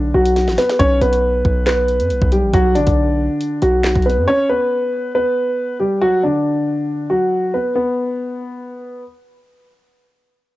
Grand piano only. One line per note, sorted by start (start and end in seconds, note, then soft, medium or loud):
0.00 0.11 D3 medium
0.00 0.11 D4 medium
0.14 0.56 F#3 medium
0.14 0.55 F#4 medium
0.58 0.78 B3 medium
0.58 0.78 B4 medium
0.79 0.99 C#4 medium
0.79 0.99 C#5 loud
1.01 1.63 B3 medium
1.01 1.63 B4 medium
1.67 2.28 B3 medium
1.67 2.28 B4 medium
2.32 2.52 G3 medium
2.32 2.51 G4 medium
2.54 2.73 F#3 medium
2.54 2.73 F#4 loud
2.75 3.59 D3 medium
2.75 3.58 D4 medium
3.62 4.03 F#3 medium
3.62 4.03 F#4 medium
4.06 4.26 B3 medium
4.06 4.25 B4 medium
4.28 4.47 C#4 medium
4.28 4.47 C#5 loud
4.49 5.11 B3 medium
4.49 5.11 B4 loud
5.15 5.76 B3 medium
5.15 5.76 B4 medium
5.80 6.00 G3 medium
5.80 5.99 G4 medium
6.02 6.21 F#3 medium
6.02 6.21 F#4 loud
6.23 7.07 D3 medium
6.23 7.06 D4 medium
7.10 7.51 F#3 medium
7.10 7.51 F#4 medium
7.54 7.74 B3 medium
7.54 7.73 B4 medium
7.75 9.02 B3 medium